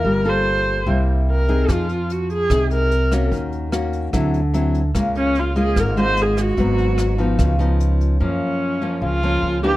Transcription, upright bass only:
\new Staff \with { instrumentName = "Upright bass" } { \clef bass \time 4/4 \key des \major \tempo 4 = 147 g,,2 c,2 | f,2 c,2 | ees,2 d,2 | des,2 aes,,2 |
aes,,2 des,2 | \key fis \major fis,8 r4. cis,4 cis,4 | }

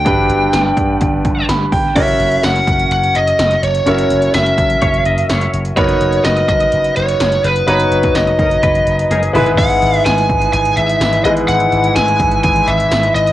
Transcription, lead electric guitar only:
\new Staff \with { instrumentName = "Lead electric guitar" } { \time 4/4 \key fis \mixolydian \tempo 4 = 126 g''2. r4 | e''4 fis''4 fis''8 dis''4 cis''8 | cis''4 e''2~ e''8 r8 | cis''4 dis''8 dis''4 cis''4 b'8 |
b'4 dis''2~ dis''8 r8 | fis''4 gis''4 gis''8 e''4 dis''8 | fis''4 gis''4 gis''8 e''4 dis''8 | }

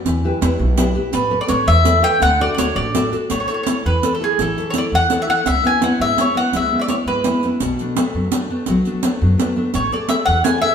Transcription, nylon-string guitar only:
\new Staff \with { instrumentName = "Nylon-string guitar" } { \time 6/8 \key d \major \tempo 4. = 112 e8 <e' g' b'>8 <e' g' b'>8 b,8 <e' g' b'>8 <e' g' b'>8 | a8 <a' b' cis''>8 <a' b' cis''>8 e8 <a' b' cis''>8 <a' b' cis''>8 | d8 <d' fis' a'>8 <d' fis' a'>8 a8 <d' fis' a'>8 <d' fis' a'>8 | \key a \major a8 <e' a' cis''>8 <e' a' cis''>8 e8 <e' a' cis''>8 <e' a' cis''>8 |
e8 <e' a' cis''>8 <e' a' cis''>8 e8 <e' a' cis''>8 <e' a' cis''>8 | cis8 <b cis' e'>8 <b cis' e'>8 gis8 <b cis' e'>8 <b cis' e'>8 | gis8 <b cis' e'>8 <b cis' e'>8 gis8 <b cis' e'>8 <b cis' e'>8 | b,8 <a b d'>8 <a b d'>8 fis8 <a b d'>8 <a b d'>8 |
fis8 <a b d'>8 <a b d'>8 fis8 <a b d'>8 <a b d'>8 | a8 <gis' a' cis''>8 <gis' a' cis''>8 e8 <gis' a' cis''>8 <gis' a' cis''>8 | }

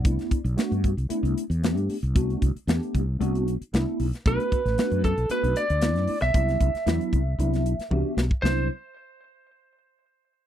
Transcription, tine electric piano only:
\new Staff \with { instrumentName = "Tine electric piano" } { \time 4/4 \key c \lydian \tempo 4 = 114 <a b d' e'>8 r8 <a b d' fis'>8 r8 <a b d' e'>8 r8 <a b d' g'>8 r8 | <a b d' fis'>8 r8 <a b d' g'>8 r8 <a b d' fis'>8 r8 <a b d' e'>8 r8 | <a b d' fis'>8 r8 <a b d' fis'>8 r8 <a b d' fis'>8 r8 <a b d' e'>8 r8 | <fis b d' e'>8 r8 <fis b d' e'>8 r8 <fis b d' e'>8 r8 <b d' fis' g'>8 r8 |
<fis b d' e'>8 r2. r8 | }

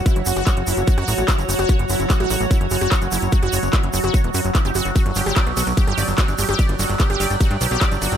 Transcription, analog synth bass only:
\new Staff \with { instrumentName = "Analog synth bass" } { \clef bass \time 4/4 \key g \lydian \tempo 4 = 147 r16 fis,,16 fis,,16 fis,,16 r16 fis,,16 fis,,16 fis,,16 r16 fis,16 a,,16 a,,16 r16 fis,,16 fis,,16 fis,,16 | r16 fis,,16 fis,,16 fis,,16 r16 a,,16 a,,16 a,,16 r16 fis,,16 fis,,16 fis,,16 r16 fis,,16 fis,,16 fis,,16 | r16 fis,,16 fis,,16 fis,,16 r16 fis,,16 fis,,16 fis,,16 r16 e,,16 fis,16 fis,,16 r16 fis,,16 fis,,16 fis,,16 | r16 g,,16 g,,16 g,,16 r16 b,,16 b,,16 b,,16 r16 g,,16 g,,16 g,,16 r16 g,,16 g,,16 g,,16 |
r16 g,,16 g,,16 g,,16 r16 g,,16 g,,16 g,,16 r16 g,16 b,,16 b,,16 r16 g,,16 g,,16 g,,16 | }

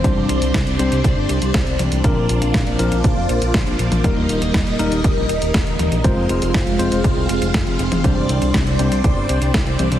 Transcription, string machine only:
\new Staff \with { instrumentName = "String machine" } { \time 4/4 \key c \minor \tempo 4 = 120 << { <g d' d''>1 | <bes f' d''>1 | <g ees' ees''>1 | <aes f' f''>1 |
<g d' d''>1 | } \\ { <c' c''>1 | c''1 | <bes bes'>1 | <c' c''>1~ |
<c' c''>1 | } >> }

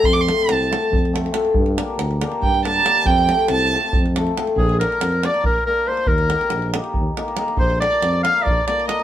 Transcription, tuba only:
\new Staff \with { instrumentName = "Tuba" } { \clef bass \time 7/8 \key f \major \tempo 4 = 139 f,4 c,4 f,4. | g,4 d,4 g,4. | f,4 c,4 f,4. | \key bes \mixolydian bes,,4 f,4 bes,,8 r4 |
ees,4 bes,,4 ees,8 r4 | bes,,4 f,4 bes,,8 r4 | }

